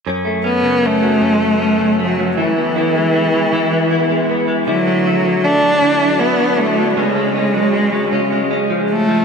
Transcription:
<<
  \new Staff \with { instrumentName = "Cello" } { \time 6/8 \key fis \minor \tempo 4. = 52 r8 b8 a4. fis8 | e2~ e8 r8 | fis4 d'4 b8 a8 | gis2 r8 a8 | }
  \new Staff \with { instrumentName = "Clean electric guitar" } { \time 6/8 \key fis \minor <fis, cis'>16 a16 cis'16 cis16 a16 fis16 <fis, cis'>16 a16 cis'16 cis16 a16 fis16 | <e e'>16 b16 e'16 gis16 b16 gis16 <e e'>16 b16 e'16 gis16 b16 gis16 | <d e'>16 a16 e'16 fis16 a16 fis16 <d e'>16 a16 e'16 fis16 a16 fis16 | <cis cis'>16 gis16 cis'16 fis16 gis16 fis16 <cis cis'>16 gis16 cis'16 eis8 eis16 | }
>>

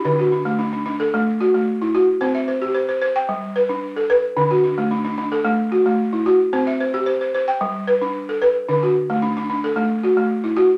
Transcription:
\new Staff \with { instrumentName = "Balafon" } { \time 4/4 \key d \mixolydian \tempo 4 = 111 << { d'16 fis'16 d'8 d'16 d'8 a'8. fis'8. e'8. | c''16 e''16 c''8 c''16 c''8 g''8 r16 b'8. a'8. | d'16 fis'16 d'8 d'16 d'8 a'8. fis'8. e'8. | c''16 e''16 c''8 c''16 c''8 g''8 r16 b'8. a'8. |
d'16 fis'8. d'16 d'8 a'8. fis'8. e'8. | } \\ { d8 r16 a8 r16 d'8 a8 r16 a8 r16 fis'8 | c'8 r16 g'8 r16 c''8 g8 r16 d'8 r16 b'8 | d8 r16 a8 r16 d'8 a8 r16 a8 r16 fis'8 | c'8 r16 g'8 r16 c''8 g8 r16 d'8 r16 b'8 |
d8 r16 a8 r16 d'8 a8 r16 a8 r16 fis'8 | } >> }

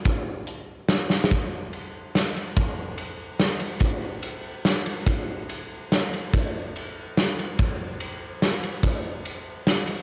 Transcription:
\new DrumStaff \with { instrumentName = "Drums" } \drummode { \time 3/4 \tempo 4 = 144 <hh bd>4 hh4 \tuplet 3/2 { <hh sn>16 r16 r16 sn16 r16 sn16 } | <bd cymr>4 cymr4 <cymr sn>8 cymr8 | <bd cymr>4 cymr4 <cymr sn>8 cymr8 | <bd cymr>4 cymr4 <cymr sn>8 cymr8 |
<bd cymr>4 cymr4 <cymr sn>8 cymr8 | <bd cymr>4 cymr4 <cymr sn>8 cymr8 | <bd cymr>4 cymr4 <cymr sn>8 cymr8 | <bd cymr>4 cymr4 <cymr sn>8 cymr8 | }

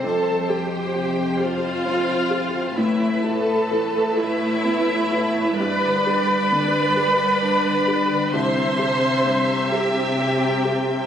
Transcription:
<<
  \new Staff \with { instrumentName = "Violin section" } { \time 6/8 \key a \minor \tempo 4. = 44 a''8 g''4 f''4. | e''8 a''4 e''4. | b''2. | c'''4. g''4. | }
  \new Staff \with { instrumentName = "Violin section" } { \time 6/8 \key a \minor c''2. | b'2. | d''2. | e''2. | }
  \new Staff \with { instrumentName = "Viola section" } { \time 6/8 \key a \minor a'8 g'4 f'4. | e'8 a'4 e'4. | b'2. | c''4. g'4. | }
  \new Staff \with { instrumentName = "Felt piano" } { \time 6/8 \key a \minor f,8 g'8 c8 g'8 c'8 g'8 | a,8 e'8 e8 e'8 b8 e'8 | g,8 g'8 d8 g'8 d'8 g'8 | c,8 g'8 g,8 g'8 c'8 g'8 | }
  \new Staff \with { instrumentName = "Harp" } { \time 6/8 \key a \minor <f, g c' g' c''>16 c16 c'16 g'16 c''16 g'16 c''16 g'16 c'16 c16 c'16 c16 | a,16 e16 b16 e'16 a'16 e'16 a'16 e'16 b16 e16 b16 e16 | g,16 d16 d'16 g'16 d''16 g'16 d''16 g'16 d'16 d16 d'16 d16 | c16 g16 c'16 g'16 e''16 g'16 e''16 g'16 c'16 g16 c'16 g16 | }
  \new Staff \with { instrumentName = "Cello section" } { \clef bass \time 6/8 \key a \minor f,2. | a,2. | g,2. | c2. | }
>>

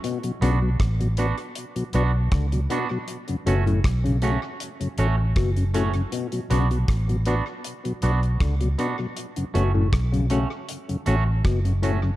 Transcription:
<<
  \new Staff \with { instrumentName = "Clean electric guitar" } { \time 4/4 \key fis \minor \tempo 4 = 79 r8 <b d' fis'>8 r8 <b d' fis'>8 r8 <b d' fis'>8 r8 <b d' fis'>8 | r8 <a cis' fis'>8 r8 <a cis' fis'>8 r8 <a cis' fis'>8 r8 <a cis' fis'>8 | r8 <b d' fis'>8 r8 <b d' fis'>8 r8 <b d' fis'>8 r8 <b d' fis'>8 | r8 <a cis' fis'>8 r8 <a cis' fis'>8 r8 <a cis' fis'>8 r8 <a cis' fis'>8 | }
  \new Staff \with { instrumentName = "Tonewheel organ" } { \time 4/4 \key fis \minor r8 <b d' fis'>8 r8 <b d' fis'>8 r8 <b d' fis'>8 r8 <b d' fis'>8 | r8 <a cis' fis'>8 r8 <a cis' fis'>8 r8 <a cis' fis'>8 r8 <a cis' fis'>8 | r8 <b d' fis'>8 r8 <b d' fis'>8 r8 <b d' fis'>8 r8 <b d' fis'>8 | r8 <a cis' fis'>8 r8 <a cis' fis'>8 r8 <a cis' fis'>8 r8 <a cis' fis'>8 | }
  \new Staff \with { instrumentName = "Tonewheel organ" } { \clef bass \time 4/4 \key fis \minor r16 <b, fis>16 r16 <b, fis>16 r16 <b, fis>16 r8. <b, fis>16 r8. <b, fis>16 r16 <b, fis>16 | r16 <fis, cis>16 r16 <fis, cis>16 r16 <fis, cis>16 r8. <fis, cis>16 r8. <fis, cis>16 r16 <fis, cis>16 | r16 <b, fis>16 r16 <b, fis>16 r16 <b, fis>16 r8. <b, fis>16 r8. <b, fis>16 r16 <b, fis>16 | r16 <fis, cis>16 r16 <fis, cis>16 r16 <fis, cis>16 r8. <fis, cis>16 r8. <fis, cis>16 r16 <fis, cis>16 | }
  \new Staff \with { instrumentName = "Clav" } { \clef bass \time 4/4 \key fis \minor b,16 r16 cis16 r2 r16 d16 r16 b,16 r16 | r8 b,16 a,16 r16 cis16 cis16 r4 r16 b,16 r16 a,16 r16 | b,16 r16 cis16 r2 r16 d16 r16 b,16 r16 | r8 b,16 a,16 r16 cis16 cis16 r4 r16 b,16 r16 a,16 r16 | }
  \new Staff \with { instrumentName = "Fingered electric bass" } { \clef bass \time 4/4 \key fis \minor r8 b,,8 a,,8. r8. b,,8 cis,8 r8 | r8 fis,,8 b,,8. r8. a,,8 fis,,4 | r8 b,,8 a,,8. r8. b,,8 cis,8 r8 | r8 fis,,8 b,,8. r8. a,,8 fis,,4 | }
  \new DrumStaff \with { instrumentName = "Drums" } \drummode { \time 4/4 hh16 hh16 hh8 <hh bd ss>16 hh16 hh16 hh16 hh16 hh16 hh8 <hh bd ss>16 hh16 hh8 | hh16 hh16 hh16 hh16 <hh bd ss>16 hh16 hh8 hh16 hh16 hh8 <hh bd ss>16 hh16 hh16 hh16 | hh16 hh16 hh16 hh16 <hh bd ss>16 hh16 hh8 hh16 hh16 hh16 hh16 <hh bd ss>16 hh16 hh8 | hh16 hh16 hh8 <hh bd ss>16 hh16 hh8 hh16 hh16 hh8 <hh bd ss>16 hh16 hh8 | }
>>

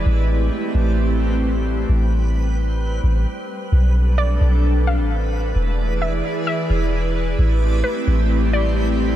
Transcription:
<<
  \new Staff \with { instrumentName = "Synth pluck" } { \time 4/4 \key a \minor \tempo 4 = 131 r1 | r1 | r4 d''4. f''4. | r4 e''4 e''2 |
r4 b'4. d''4. | }
  \new Staff \with { instrumentName = "Analog synth pad" } { \time 4/4 \key a \minor << { <a c' g' b'>1~ | <a c' g' b'>2. r4 | <d' a' b'>1 | <e gis' d''>1 |
<a c' g'>1 | } \\ { e'1~ | e'2. r4 | r1 | e'1~ |
e'1 | } >> }
  \new Staff \with { instrumentName = "Synth texture" } { \time 4/4 \key a \minor <g c' b'>1~ | <g c' b'>1 | <a d' b'>1 | <gis e' d''>1 |
<g c' b''>1 | }
  \new Staff \with { instrumentName = "808-style bass" } { \clef bass \time 4/4 \key a \minor a,,4 r8 a,,2~ a,,8 | a,,2~ a,,8 a,,8 r4 | b,,4. b,,4~ b,,16 a,,4~ a,,16 | e,,4. r4 e,,4. |
a,,4 r8 a,,2~ a,,8 | }
>>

